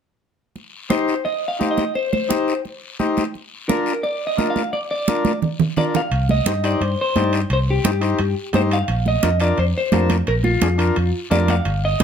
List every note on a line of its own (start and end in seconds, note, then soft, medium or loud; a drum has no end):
0.56 high conga soft
0.56 long guiro medium
0.90 1.15 D#4 medium
0.90 1.15 G4 medium
0.90 1.26 C5 medium
0.90 1.15 C5 medium
0.90 high conga medium
0.90 short guiro medium
1.08 short guiro medium
1.25 1.48 D#5 medium
1.25 high conga soft
1.25 long guiro medium
1.48 1.71 F5 medium
1.59 1.84 D#4 medium
1.59 1.84 G4 soft
1.59 1.85 C5 medium
1.59 high conga medium
1.59 short guiro medium
1.71 1.93 D#5 medium
1.77 high conga medium
1.77 short guiro medium
1.95 2.12 C5 medium
1.95 high conga soft
1.95 long guiro medium
2.13 2.61 C5 medium
2.13 high conga medium
2.29 2.54 D#4 medium
2.29 2.54 G4 medium
2.29 2.54 C5 medium
2.29 high conga medium
2.29 short guiro medium
2.48 short guiro medium
2.65 high conga soft
2.65 long guiro medium
2.99 3.24 D#4 medium
2.99 3.24 G4 medium
2.99 3.24 C5 medium
2.99 high conga medium
2.99 short guiro medium
3.17 high conga medium
3.17 short guiro medium
3.34 high conga soft
3.34 long guiro medium
3.69 3.93 D4 medium
3.69 3.93 F4 medium
3.69 4.01 A#4 medium
3.69 3.93 A#4 medium
3.69 high conga medium
3.69 short guiro medium
3.86 short guiro medium
4.03 4.27 D5 medium
4.03 high conga soft
4.03 long guiro medium
4.27 4.48 D#5 medium
4.37 4.62 D4 medium
4.37 4.62 F4 medium
4.37 4.63 A#4 medium
4.37 high conga medium
4.37 short guiro medium
4.50 4.73 F5 medium
4.56 high conga medium
4.56 short guiro medium
4.73 4.78 D5 medium
4.73 high conga soft
4.73 long guiro medium
4.91 5.39 D5 medium
5.08 5.32 D4 medium
5.08 5.32 F4 medium
5.08 5.33 A#4 medium
5.08 high conga medium
5.08 short guiro medium
5.25 high conga medium
5.25 short guiro medium
5.42 low conga medium
5.42 long guiro medium
5.59 low conga medium
5.76 6.01 D4 medium
5.76 6.01 F4 medium
5.76 6.02 A#4 medium
5.76 5.83 D5 medium
5.76 low conga medium
5.76 short guiro medium
5.94 6.28 F5 medium
5.94 low conga medium
5.94 short guiro medium
6.11 6.39 C2 medium
6.11 high conga soft
6.11 high timbale medium
6.11 long guiro medium
6.29 6.65 D#5 loud
6.29 high conga medium
6.46 6.74 G2 medium
6.46 6.52 D#4 medium
6.46 6.53 G4 medium
6.46 6.53 C5 medium
6.46 high conga medium
6.46 high timbale medium
6.46 short guiro medium
6.64 6.82 D#4 medium
6.64 6.82 G4 medium
6.64 6.82 C5 medium
6.64 6.82 D5 medium
6.64 high timbale medium
6.64 short guiro medium
6.81 6.95 G2 medium
6.81 6.99 C5 medium
6.81 high conga soft
6.81 high timbale medium
6.81 long guiro medium
7.01 7.32 C5 loud
7.16 7.44 G2 medium
7.16 7.40 D#4 medium
7.16 7.40 G4 medium
7.16 7.40 D5 medium
7.16 high conga medium
7.16 high timbale medium
7.16 low timbale medium
7.16 short guiro medium
7.33 high timbale medium
7.33 short guiro medium
7.50 7.78 C2 medium
7.50 7.58 C5 medium
7.50 high conga soft
7.50 high timbale medium
7.50 long guiro medium
7.70 8.34 G4 medium
7.84 8.13 G2 medium
7.84 7.91 D#4 medium
7.84 7.91 G4 medium
7.84 7.91 C5 medium
7.84 high conga medium
7.84 high timbale medium
7.84 short guiro medium
8.01 8.20 D#4 medium
8.01 8.20 G4 medium
8.01 8.20 C5 medium
8.01 high timbale medium
8.01 short guiro medium
8.19 8.33 G2 medium
8.19 high conga soft
8.19 high timbale medium
8.19 long guiro medium
8.53 8.82 G2 medium
8.53 8.78 D#4 medium
8.53 8.78 G4 medium
8.53 8.78 C5 medium
8.53 8.60 C5 medium
8.53 high conga medium
8.53 high timbale medium
8.53 low timbale medium
8.53 short guiro medium
8.71 9.07 F5 medium
8.71 high timbale medium
8.71 short guiro medium
8.88 9.16 A#1 medium
8.88 high conga soft
8.88 high timbale medium
8.88 long guiro medium
9.06 9.41 D#5 loud
9.06 high conga medium
9.23 9.51 F2 medium
9.23 9.29 D4 medium
9.23 9.29 F4 medium
9.23 9.30 A#4 medium
9.23 high conga medium
9.23 high timbale medium
9.23 short guiro medium
9.40 9.59 D4 medium
9.40 9.59 F4 medium
9.40 9.59 A#4 medium
9.40 9.59 D5 medium
9.40 high timbale medium
9.40 short guiro medium
9.57 9.72 F2 medium
9.57 9.64 C5 medium
9.57 high conga soft
9.57 high timbale medium
9.57 long guiro medium
9.78 10.09 C5 medium
9.92 10.21 F2 medium
9.92 10.17 D4 medium
9.92 10.17 F4 medium
9.92 10.17 A#4 medium
9.92 high conga medium
9.92 high timbale medium
9.92 low timbale medium
9.92 short guiro medium
10.10 high conga medium
10.10 high timbale medium
10.10 short guiro medium
10.27 10.55 A#1 medium
10.27 10.33 A#4 medium
10.27 high conga soft
10.27 high timbale medium
10.27 long guiro medium
10.44 11.10 F4 medium
10.44 high conga medium
10.61 10.90 F2 medium
10.61 10.68 D4 medium
10.61 10.68 F4 medium
10.61 10.68 G#4 medium
10.61 high conga medium
10.61 high timbale medium
10.61 short guiro medium
10.78 10.97 D4 medium
10.78 10.97 F4 medium
10.78 10.97 A#4 medium
10.78 high timbale medium
10.78 short guiro medium
10.96 11.11 F2 medium
10.96 high conga soft
10.96 high timbale medium
10.96 long guiro medium
11.30 11.59 F2 medium
11.30 11.55 D4 medium
11.30 11.55 F4 medium
11.30 11.55 A#4 medium
11.30 11.50 D5 medium
11.30 high conga medium
11.30 high timbale medium
11.30 low timbale medium
11.30 short guiro medium
11.48 11.85 F5 medium
11.48 high conga medium
11.48 high timbale medium
11.48 short guiro medium
11.65 11.93 G1 loud
11.65 high conga soft
11.65 high timbale medium
11.65 long guiro medium
11.85 12.04 D#5 medium
12.00 12.04 D2 medium
12.00 high conga medium
12.00 high timbale medium